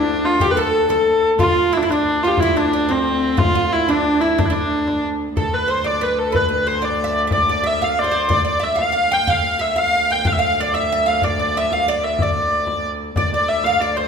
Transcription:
Already playing: viola da gamba D2, hurdy-gurdy D4, recorder D4, oud D4
0.23 recorder F4, hurdy-gurdy F4, frame drum
0.40 recorder G4, oud G4, hurdy-gurdy G4, frame drum
0.45 recorder F4 G4
0.51 recorder A4, hurdy-gurdy B4
0.57 oud A4, hurdy-gurdy A4
0.89 recorder A4, oud A4, hurdy-gurdy A4, frame drum
1.06 frame drum
1.23 frame drum
1.39 viola da gamba D2, recorder F4, hurdy-gurdy F4, oud F4, frame drum
1.56 frame drum
1.72 oud E4, hurdy-gurdy E4, frame drum
1.77 hurdy-gurdy D4
1.83 oud E4, hurdy-gurdy E4
1.88 recorder D4, hurdy-gurdy D4, frame drum
1.92 oud D4
2.05 frame drum
2.23 recorder F4, hurdy-gurdy F4, oud F4, frame drum
2.27 recorder F4, hurdy-gurdy G4
2.31 hurdy-gurdy F4
2.37 recorder E4, hurdy-gurdy E4, frame drum
2.42 oud E4
2.55 recorder D4, oud D4, hurdy-gurdy D4, frame drum
2.72 oud D4, frame drum
2.89 oud C4, recorder C4, hurdy-gurdy C4, frame drum
3.06 frame drum
3.22 frame drum
3.37 oud F4, recorder F4, hurdy-gurdy F4, frame drum
3.55 oud F4, frame drum
3.72 hurdy-gurdy E4, frame drum
3.87 recorder D4, oud D4, hurdy-gurdy D4, frame drum
4.05 frame drum
4.21 hurdy-gurdy E4, oud E4, recorder E4, frame drum
4.38 oud D4, hurdy-gurdy D4, recorder D4, frame drum
4.45 hurdy-gurdy E4
4.50 oud D4, recorder D4, hurdy-gurdy D4
4.88 frame drum
5.36 viola da gamba D2, hurdy-gurdy A4, oud A4, frame drum
5.54 hurdy-gurdy B4, frame drum
5.68 oud C5, hurdy-gurdy C5
5.84 oud D5, hurdy-gurdy D5, frame drum
6.01 oud B4, hurdy-gurdy B4, frame drum
6.19 hurdy-gurdy A4
6.32 oud B4, hurdy-gurdy B4, frame drum
6.49 oud B4, hurdy-gurdy B4, frame drum
6.67 oud C5, hurdy-gurdy C5
6.82 oud D5, hurdy-gurdy D5, frame drum
6.99 frame drum
7.04 oud E5
7.27 oud E5, frame drum
7.32 oud D5, hurdy-gurdy D5
7.49 oud D5, hurdy-gurdy D5, frame drum
7.64 oud E5, hurdy-gurdy E5
7.81 oud F5, hurdy-gurdy F5, frame drum
7.98 hurdy-gurdy C5 D5, frame drum
8.04 oud D5, hurdy-gurdy D5
8.11 oud C5
8.16 hurdy-gurdy C5
8.29 oud D5, hurdy-gurdy D5, frame drum
8.45 oud D5, hurdy-gurdy D5
8.59 oud E5
8.64 hurdy-gurdy E5
8.76 oud F5, frame drum
8.82 hurdy-gurdy F5
8.92 oud F5, frame drum
9.12 oud G5, hurdy-gurdy G5
9.27 viola da gamba D2, oud F5, hurdy-gurdy F5, frame drum
9.44 frame drum
9.59 oud E5, hurdy-gurdy E5
9.76 oud F5, hurdy-gurdy F5, frame drum
9.93 frame drum
10.11 oud G5, hurdy-gurdy G5
10.25 oud F5, hurdy-gurdy F5, frame drum
10.32 hurdy-gurdy E5
10.39 oud F5, hurdy-gurdy F5, frame drum
10.60 hurdy-gurdy D5, oud D5
10.74 hurdy-gurdy E5, oud E5, frame drum
10.91 oud E5, frame drum
11.06 oud F5, hurdy-gurdy F5
11.22 oud D5, hurdy-gurdy D5, frame drum
11.38 oud D5, hurdy-gurdy D5, frame drum
11.57 oud E5, hurdy-gurdy E5
11.71 oud F5, hurdy-gurdy F5, frame drum
11.87 oud D5, hurdy-gurdy D5, frame drum
12.04 hurdy-gurdy E5
12.19 hurdy-gurdy D5, frame drum
12.23 oud D5
12.36 frame drum
12.67 frame drum
12.83 frame drum
13.15 viola da gamba D2, recorder D5, hurdy-gurdy D5, oud D5, frame drum
13.33 hurdy-gurdy D5, recorder D5, oud D5
13.48 hurdy-gurdy E5, recorder E5
13.64 hurdy-gurdy F5, recorder F5, oud F5, frame drum
13.81 recorder D5, hurdy-gurdy D5, oud D5, frame drum
13.97 hurdy-gurdy C5, oud C5, recorder C5

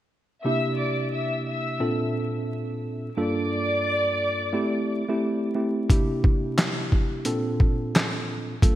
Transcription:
0.44 tine electric piano C3 A#3 D4 E4 G4, violin section E5 E6
0.77 violin section D5 D6
1.12 violin section E5 E6
1.47 violin section E5 E6
1.80 tine electric piano A#2 C4 D4 F4 A4
3.17 tine electric piano G2 A#3 D4 F4 A4, violin section D5 D6
4.53 tine electric piano A3 C4 E4 G4
5.09 tine electric piano A3 C4 E4 G4
5.55 tine electric piano A3 C4 E4 G4
5.90 tine electric piano C3 A#3 D4 E4 G4, kick, closed hi-hat
6.24 kick
6.58 snare, clap, closed hi-hat
6.92 kick
7.25 tine electric piano A#2 C4 D4 F4 A4, closed hi-hat
7.60 kick
7.95 snare, clap, closed hi-hat
8.62 tine electric piano G2 A#3 D4 F4 A4, kick, closed hi-hat

